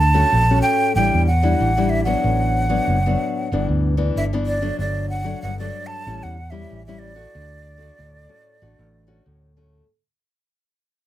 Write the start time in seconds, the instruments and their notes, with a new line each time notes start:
Already playing: fingered electric bass D2, nylon-string guitar D3
0.00 flute A5
0.14 nylon-string guitar A3 C#4 F#4
0.32 fingered electric bass A#1, nylon-string guitar A2
0.50 nylon-string guitar A3 C#4 F#4
0.62 flute G5
0.95 fingered electric bass A1, nylon-string guitar A2 G3 D4 E4, flute G5
1.14 fingered electric bass E2
1.26 flute F#5
1.43 nylon-string guitar G3 D4 E4
1.60 fingered electric bass A1, nylon-string guitar E3
1.77 nylon-string guitar G3 D4 E4
1.89 flute E5
2.04 nylon-string guitar F#3 B3 D4, flute F#5
2.24 fingered electric bass A1, nylon-string guitar A2
2.69 nylon-string guitar F#3 B3 D4
2.87 fingered electric bass F#1, nylon-string guitar A2
3.06 nylon-string guitar F#3 B3 D4
3.52 fingered electric bass G1, nylon-string guitar G2 E3 B3 D4
3.68 fingered electric bass D2
3.97 nylon-string guitar E3 B3 D4
4.15 fingered electric bass G1, nylon-string guitar D3, flute E5
4.33 nylon-string guitar E3 B3 D4
4.46 flute D5
4.62 nylon-string guitar F#3 A3 D4
4.78 fingered electric bass G1, nylon-string guitar G2, flute D5
5.09 flute F#5
5.24 nylon-string guitar F#3 A3 D4
5.42 fingered electric bass G1, nylon-string guitar G2, flute F#5
5.59 nylon-string guitar F#3 A3 D4, flute D5
5.87 flute A5
6.06 fingered electric bass A1, nylon-string guitar A2 G3 C#4 E4
6.23 fingered electric bass E2, flute F#5
6.50 nylon-string guitar G3 C#4 E4, flute E5
6.71 fingered electric bass A1, nylon-string guitar E3
6.86 nylon-string guitar G3 C#4 E4, flute E5
6.99 flute D5
7.15 nylon-string guitar A3 F#4
7.34 fingered electric bass D2, nylon-string guitar D3
7.78 nylon-string guitar A3 F#4
7.98 fingered electric bass D2, nylon-string guitar A2
8.29 nylon-string guitar A3 C#4 F#4
8.62 fingered electric bass A1, nylon-string guitar D3 A3 F#4
8.79 fingered electric bass A1
9.07 nylon-string guitar A3 C#4 F#4
9.26 fingered electric bass D2, nylon-string guitar A2
9.57 nylon-string guitar A3 C#4 F#4